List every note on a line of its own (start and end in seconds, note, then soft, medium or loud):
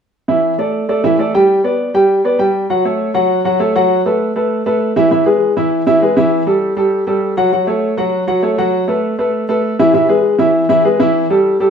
0.28 0.53 E3 medium
0.28 0.53 E4 medium
0.28 0.53 E5 medium
0.58 0.83 A3 medium
0.58 0.83 A4 medium
0.58 0.83 D5 medium
0.89 1.01 A3 medium
0.89 1.01 A4 medium
0.89 1.01 D5 medium
1.04 1.16 E3 medium
1.04 1.16 E4 medium
1.04 1.16 E5 medium
1.19 1.31 A3 medium
1.19 1.31 A4 medium
1.19 1.31 D5 medium
1.34 1.59 G3 medium
1.34 1.59 G4 medium
1.34 1.59 G5 medium
1.64 1.88 B3 medium
1.64 1.89 B4 medium
1.64 1.89 D5 medium
1.94 2.19 G3 medium
1.94 2.19 G4 medium
1.94 2.19 G5 medium
2.24 2.37 B3 medium
2.24 2.37 B4 medium
2.24 2.37 D5 medium
2.39 2.64 G3 medium
2.39 2.64 G4 medium
2.39 2.64 G5 medium
2.70 2.82 F#3 medium
2.70 2.82 F#4 medium
2.70 2.82 F#5 medium
2.85 3.09 A3 medium
2.85 3.10 A4 medium
2.85 3.10 C#5 medium
3.14 3.39 F#3 medium
3.14 3.39 F#4 medium
3.14 3.39 F#5 medium
3.45 3.57 F#3 medium
3.45 3.57 F#4 medium
3.45 3.57 F#5 medium
3.60 3.72 A3 medium
3.60 3.72 A4 medium
3.60 3.72 C#5 medium
3.76 4.00 F#3 medium
3.76 4.00 F#4 medium
3.76 4.00 F#5 medium
4.06 4.30 A3 medium
4.06 4.30 A4 medium
4.06 4.30 B4 medium
4.36 4.60 A3 medium
4.36 4.60 A4 medium
4.36 4.61 B4 medium
4.66 4.90 A3 medium
4.66 4.90 A4 medium
4.66 4.91 B4 medium
4.96 5.08 E3 medium
4.96 5.09 E4 medium
4.96 5.09 E5 medium
5.11 5.23 E3 medium
5.11 5.24 E4 medium
5.11 5.24 E5 medium
5.26 5.50 G#3 medium
5.26 5.51 G#4 medium
5.26 5.51 B4 medium
5.57 5.81 E3 medium
5.57 5.81 E4 medium
5.57 5.82 E5 medium
5.87 5.99 E3 medium
5.87 5.99 E4 medium
5.87 5.99 E5 medium
6.02 6.14 G#3 medium
6.02 6.14 G#4 medium
6.02 6.14 B4 medium
6.17 6.41 E3 medium
6.17 6.42 E4 medium
6.17 6.42 E5 medium
6.46 6.71 G3 medium
6.46 6.71 G4 medium
6.46 6.72 A4 medium
6.77 7.01 G3 medium
6.77 7.01 G4 medium
6.77 7.02 A4 medium
7.07 7.32 G3 medium
7.07 7.32 G4 medium
7.07 7.32 A4 medium
7.37 7.49 F#3 medium
7.37 7.50 F#4 medium
7.37 7.50 F#5 medium
7.52 7.65 F#3 medium
7.52 7.65 F#4 medium
7.52 7.65 F#5 medium
7.67 7.92 A3 medium
7.67 7.92 A4 medium
7.67 7.92 C#5 medium
7.97 8.22 F#3 medium
7.97 8.22 F#4 medium
7.97 8.23 F#5 medium
8.27 8.40 F#3 medium
8.27 8.40 F#4 medium
8.27 8.40 F#5 medium
8.42 8.55 A3 medium
8.42 8.55 A4 medium
8.42 8.55 C#5 medium
8.58 8.83 F#3 medium
8.58 8.83 F#4 medium
8.58 8.83 F#5 medium
8.88 9.13 A3 medium
8.88 9.13 A4 medium
8.88 9.13 B4 medium
9.19 9.43 A3 medium
9.19 9.43 A4 medium
9.19 9.43 B4 medium
9.49 9.73 A3 medium
9.49 9.73 A4 medium
9.49 9.74 B4 medium
9.79 9.92 E3 medium
9.79 9.92 E4 medium
9.79 9.92 E5 medium
9.94 10.06 E3 medium
9.94 10.06 E4 medium
9.94 10.07 E5 medium
10.09 10.34 G#3 medium
10.09 10.34 G#4 medium
10.09 10.34 B4 medium
10.39 10.64 E3 medium
10.39 10.64 E4 medium
10.39 10.64 E5 medium
10.69 10.82 E3 medium
10.69 10.82 E4 medium
10.69 10.82 E5 medium
10.85 10.97 G#3 medium
10.85 10.97 G#4 medium
10.85 10.97 B4 medium
11.00 11.24 E3 medium
11.00 11.25 E4 medium
11.00 11.25 E5 medium
11.30 11.55 G3 medium
11.30 11.55 G4 medium
11.30 11.55 A4 medium
11.60 11.70 G3 medium
11.60 11.70 G4 medium
11.60 11.70 A4 medium